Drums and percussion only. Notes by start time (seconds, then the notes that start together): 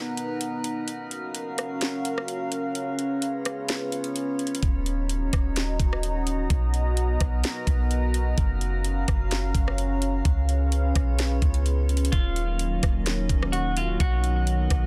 0.17 closed hi-hat
0.41 closed hi-hat
0.64 closed hi-hat
0.88 closed hi-hat
1.11 closed hi-hat
1.35 closed hi-hat
1.58 cross-stick, closed hi-hat
1.81 snare, closed hi-hat
2.05 closed hi-hat
2.18 cross-stick
2.28 closed hi-hat
2.52 closed hi-hat
2.75 closed hi-hat
2.99 closed hi-hat
3.22 closed hi-hat
3.45 cross-stick, closed hi-hat
3.69 snare, closed hi-hat
3.92 closed hi-hat
4.04 closed hi-hat
4.16 closed hi-hat
4.39 closed hi-hat
4.47 closed hi-hat
4.55 closed hi-hat
4.63 kick, closed hi-hat
4.86 closed hi-hat
5.09 closed hi-hat
5.33 kick, cross-stick, closed hi-hat
5.56 snare, closed hi-hat
5.80 kick, closed hi-hat
5.93 cross-stick
6.03 closed hi-hat
6.27 closed hi-hat
6.50 kick, closed hi-hat
6.74 closed hi-hat
6.97 closed hi-hat
7.20 kick, cross-stick, closed hi-hat
7.44 snare, closed hi-hat
7.67 kick, closed hi-hat
7.91 closed hi-hat
8.14 closed hi-hat
8.38 kick, closed hi-hat
8.61 closed hi-hat
8.85 closed hi-hat
9.08 kick, cross-stick, closed hi-hat
9.31 snare, closed hi-hat
9.55 kick, closed hi-hat
9.68 cross-stick
9.78 closed hi-hat
10.02 closed hi-hat
10.25 kick, closed hi-hat
10.49 closed hi-hat
10.72 closed hi-hat
10.95 kick, cross-stick, closed hi-hat
11.19 snare, closed hi-hat
11.42 kick, closed hi-hat
11.54 closed hi-hat
11.66 closed hi-hat
11.89 closed hi-hat
11.97 closed hi-hat
12.05 closed hi-hat
12.13 kick, closed hi-hat
12.36 closed hi-hat
12.59 closed hi-hat
12.83 kick, cross-stick, closed hi-hat
13.06 snare, closed hi-hat
13.29 kick, closed hi-hat
13.43 cross-stick
13.53 closed hi-hat
13.77 closed hi-hat
14.00 kick, closed hi-hat
14.24 closed hi-hat
14.47 closed hi-hat
14.70 kick, cross-stick, closed hi-hat